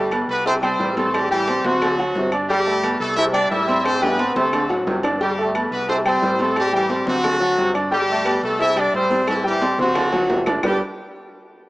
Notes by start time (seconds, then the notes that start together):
Already playing: G1 G3 A3 G4
0.11 B3 B4 B5, cowbell, high conga, low agogo, claves
0.28 C2 B3 B4, cowbell, high conga
0.45 C3 C4 E4 C5 E5 E6, cowbell, high conga, low agogo
0.62 G3 C4 G4 C5 G5, high conga, low agogo, claves
0.79 A1 G3, cowbell, high conga, low timbale
0.97 A3 C4 A4 C5 C6, cowbell, high conga, low agogo
1.14 G3 G4, cowbell, high conga, low agogo, claves
1.30 E3 G3 G4 G5, high conga
1.47 C4 C5 C6, cowbell, high conga, low agogo
1.64 D2 C3 F#3 C4 F#4 C5 C6, cowbell, high conga
1.81 D3, cowbell, high conga, low conga, low agogo, claves
1.99 F#3 F#4 F#5, high conga, low agogo
2.15 G1 C3, cowbell, high conga, low timbale
2.32 D4 D5 D6, low agogo, claves
2.49 G3 G4 G5, cowbell, high conga
2.66 A3, high conga, low agogo
2.83 B3 B4 B5, cowbell, high conga, low agogo, claves
3.00 C2 A3 A4, cowbell, high conga
3.17 C3 E4 E5 E6, cowbell, high conga, low agogo
3.33 G3 D4 G4 D5 G5, high conga, low agogo, claves
3.50 A1 G3 E4 E5, cowbell, high conga, low timbale
3.68 C4 C5 C6, cowbell, high conga, low agogo
3.85 C4 C5, cowbell, high bongo, low agogo, claves
4.01 E3 G3 B3 G4 B4 G5, high bongo, high conga
4.19 C4 C5 C6, cowbell, high conga, low agogo
4.35 D2 C3 A3 C4 A4 C5 C6, cowbell, high conga
4.53 D3, cowbell, high conga, low conga, low agogo, claves
4.69 A1 F#3 F#4 F#5, low bongo, high conga, low agogo
4.86 G1 C3, cowbell, low bongo, high conga, low timbale
5.03 D4 D5 D6, low bongo, low agogo, claves
5.20 G3 G4 G5, cowbell
5.37 A3, high conga, low agogo
5.54 B3 B4 B5, cowbell, high conga, low agogo, claves
5.71 C2 B3 B4, cowbell, high conga
5.88 C3 C4 E4 C5 E5 E6, cowbell, high conga, low agogo
6.05 G3 C4 G4 C5 G5, high conga, low agogo, claves
6.22 A1 G3, cowbell, high conga, low timbale
6.39 A3 C4 A4 C5 C6, cowbell, high conga, low agogo
6.56 G3 G4, cowbell, high conga, low agogo, claves
6.72 E3 G3 G4 G5, high conga
6.89 C4 C5 C6, cowbell, high conga, low agogo
7.06 D2 C3 F#3 C4 F#4 C5 C6, cowbell, high conga
7.23 D3, cowbell, high conga, low conga, low agogo, claves
7.40 F#3 F#4 F#5, high conga, low agogo
7.57 G1 C3, cowbell, high conga
7.74 D4 D5 D6, high conga, low agogo, claves
7.91 G3 G4 G5, cowbell, high conga
8.09 A3, high conga, low agogo
8.25 B3 B4 B5, cowbell, high conga, low agogo, claves
8.43 C2 A3 A4, cowbell, high conga
8.59 C3 E4 E5 E6, cowbell, high conga, low agogo
8.76 G3 D4 G4 D5 G5, high conga, low agogo, claves
8.93 A1 G3 C4 C5, cowbell, high conga
9.10 C4 C5 C6, cowbell, high conga, low agogo
9.27 E3 E4, cowbell, high conga, low agogo, claves
9.44 E3 G3 G4 G5, high conga
9.61 C4 C5 C6, cowbell, high conga, high timbale, low agogo
9.78 D2 C3 F#3 C4 F#4 C5 C6, cowbell, low conga
9.95 D3, cowbell, high bongo, low conga, low timbale, low agogo, claves
10.12 F#3 F#4 F#5, low bongo, low conga, low timbale, low agogo
10.29 G1 C3, cowbell, low conga, low timbale
10.46 D4 D5 D6, low bongo, low conga, low timbale, low agogo, claves
10.63 G1 G3 D4 G4 A4 B4 D5, low bongo, low conga, low timbale, claves